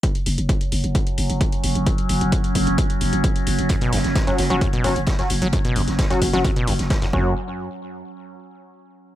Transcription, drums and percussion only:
0.03 kick, closed hi-hat
0.15 closed hi-hat
0.26 open hi-hat
0.38 closed hi-hat
0.49 kick, closed hi-hat
0.61 closed hi-hat
0.72 open hi-hat
0.84 closed hi-hat
0.95 kick, closed hi-hat
1.07 closed hi-hat
1.18 open hi-hat
1.30 closed hi-hat
1.41 kick, closed hi-hat
1.52 closed hi-hat
1.64 open hi-hat
1.75 closed hi-hat
1.86 kick, closed hi-hat
1.98 closed hi-hat
2.09 open hi-hat
2.21 closed hi-hat
2.32 kick, closed hi-hat
2.44 closed hi-hat
2.55 kick, open hi-hat
2.67 closed hi-hat
2.78 kick, closed hi-hat
2.90 closed hi-hat
3.01 open hi-hat
3.13 closed hi-hat
3.24 kick, closed hi-hat
3.36 closed hi-hat
3.47 open hi-hat
3.59 closed hi-hat
3.69 kick, closed hi-hat
3.81 closed hi-hat
3.93 snare, closed hi-hat, open hi-hat
4.04 snare, closed hi-hat
4.15 kick, snare, closed hi-hat
4.27 closed hi-hat
4.38 snare, closed hi-hat, open hi-hat
4.50 closed hi-hat
4.61 kick, closed hi-hat
4.73 closed hi-hat
4.84 closed hi-hat, open hi-hat
4.95 closed hi-hat
5.06 kick, snare, closed hi-hat
5.19 snare, closed hi-hat
5.30 closed hi-hat, open hi-hat
5.42 closed hi-hat
5.52 kick, closed hi-hat
5.65 closed hi-hat
5.76 closed hi-hat, open hi-hat
5.87 snare, closed hi-hat
5.98 kick, snare, closed hi-hat
6.10 closed hi-hat
6.22 kick, closed hi-hat, open hi-hat
6.33 snare, closed hi-hat
6.44 kick, closed hi-hat
6.56 closed hi-hat
6.67 closed hi-hat, open hi-hat
6.79 snare, closed hi-hat
6.90 kick, snare, closed hi-hat
7.02 snare, closed hi-hat
7.13 kick

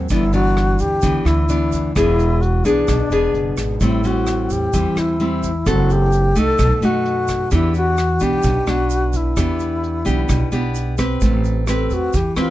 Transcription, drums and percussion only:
0.09 kick, closed hi-hat, shaker
0.33 closed hi-hat, shaker
0.57 cross-stick, closed hi-hat
0.79 kick, closed hi-hat, shaker
1.02 kick, closed hi-hat, shaker
1.26 cross-stick, closed hi-hat, shaker
1.49 closed hi-hat, shaker
1.72 kick, closed hi-hat, shaker
1.96 kick, cross-stick, closed hi-hat, shaker
2.19 closed hi-hat, shaker
2.42 closed hi-hat
2.65 kick, closed hi-hat, shaker
2.88 kick, cross-stick, closed hi-hat, shaker
3.11 closed hi-hat, shaker
3.34 closed hi-hat
3.57 kick, cross-stick, closed hi-hat, shaker
3.80 kick, closed hi-hat, shaker
4.04 closed hi-hat, shaker
4.27 cross-stick, closed hi-hat, shaker
4.50 kick, closed hi-hat, shaker
4.73 kick, closed hi-hat, shaker
4.96 cross-stick, closed hi-hat, shaker
5.20 closed hi-hat
5.43 kick, closed hi-hat, shaker
5.66 kick, cross-stick, closed hi-hat, shaker
5.90 closed hi-hat, shaker
6.12 closed hi-hat, shaker
6.36 kick, closed hi-hat, shaker
6.58 kick, cross-stick, closed hi-hat, shaker
6.82 closed hi-hat, shaker
7.05 closed hi-hat
7.28 kick, cross-stick, closed hi-hat, shaker
7.51 kick, closed hi-hat, shaker
7.74 closed hi-hat, shaker
7.97 cross-stick, closed hi-hat, shaker
8.20 kick, closed hi-hat, shaker
8.43 kick, closed hi-hat, shaker
8.67 cross-stick, closed hi-hat, shaker
8.90 closed hi-hat, shaker
9.13 kick, closed hi-hat, shaker
9.37 kick, cross-stick, closed hi-hat, shaker
9.59 closed hi-hat, shaker
9.83 closed hi-hat
10.06 kick, closed hi-hat, shaker
10.29 kick, cross-stick, closed hi-hat, shaker
10.52 closed hi-hat, shaker
10.75 closed hi-hat, shaker
10.98 kick, cross-stick, closed hi-hat, shaker
11.21 kick, closed hi-hat, shaker
11.44 closed hi-hat, shaker
11.67 cross-stick, closed hi-hat, shaker
11.90 kick, closed hi-hat, shaker
12.13 kick, closed hi-hat, shaker
12.36 cross-stick, closed hi-hat, shaker

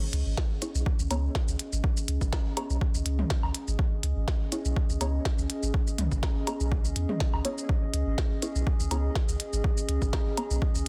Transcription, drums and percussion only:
0.13 closed hi-hat
0.37 kick, snare
0.62 closed hi-hat, shaker
0.75 shaker
0.86 kick
0.99 shaker
1.11 closed hi-hat, low woodblock, shaker
1.35 kick, snare
1.48 shaker
1.59 closed hi-hat
1.73 shaker
1.84 kick
1.97 shaker
2.08 closed hi-hat
2.21 kick, shaker
2.33 kick, snare, low woodblock
2.57 closed hi-hat, low woodblock
2.70 shaker
2.81 kick
2.94 shaker
3.06 closed hi-hat
3.19 mid tom
3.30 kick, snare
3.43 low woodblock
3.54 closed hi-hat
3.68 shaker
3.79 kick
4.03 closed hi-hat
4.28 kick, snare
4.52 closed hi-hat, shaker
4.65 shaker
4.76 kick
4.90 shaker
5.01 closed hi-hat, low woodblock, shaker
5.25 kick, snare
5.38 shaker
5.50 closed hi-hat
5.63 shaker
5.74 kick
5.87 shaker
5.98 closed hi-hat, mid tom
6.12 kick, shaker
6.23 kick, snare, low woodblock
6.47 closed hi-hat, low woodblock, shaker
6.60 shaker
6.72 kick
6.85 shaker
6.96 closed hi-hat
7.09 mid tom
7.20 kick, snare
7.34 low woodblock
7.45 closed hi-hat
7.58 shaker
7.69 kick
7.94 closed hi-hat
8.18 kick, snare
8.42 closed hi-hat, shaker
8.56 shaker
8.67 kick
8.80 shaker
8.91 closed hi-hat, low woodblock, shaker
9.15 kick, snare
9.29 shaker
9.40 closed hi-hat
9.53 shaker
9.64 kick
9.77 shaker
9.89 closed hi-hat
10.02 kick, shaker
10.13 kick, snare, low woodblock
10.37 closed hi-hat, low woodblock
10.51 shaker
10.62 kick
10.75 shaker

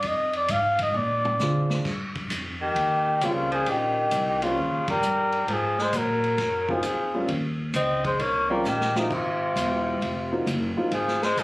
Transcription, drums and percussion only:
0.02 kick, ride
0.33 ride
0.48 kick, hi-hat pedal, ride
0.79 kick, ride
0.94 mid tom
1.25 mid tom
1.39 snare, hi-hat pedal
1.70 snare
1.85 kick, snare, crash
2.15 kick, ride
2.30 kick, hi-hat pedal, ride
2.76 kick, ride
3.21 kick, hi-hat pedal, ride
3.52 ride
3.66 kick, ride
4.11 kick, hi-hat pedal, ride
4.42 ride
4.57 kick
4.88 kick, ride
5.03 hi-hat pedal
5.32 ride
5.48 kick, ride
5.79 snare
5.93 kick, hi-hat pedal, ride
6.24 ride
6.38 kick, snare, ride
6.69 kick
6.83 kick, hi-hat pedal, ride
7.28 kick, ride
7.74 kick, hi-hat pedal, ride
8.05 kick, ride
8.19 kick, ride
8.64 snare, hi-hat pedal
8.81 snare
8.95 snare
9.11 kick, crash
9.56 kick, hi-hat pedal, ride
10.02 kick, ride
10.47 kick, hi-hat pedal, ride
10.91 kick, ride
11.08 snare
11.23 snare, ride
11.37 kick, hi-hat pedal, ride

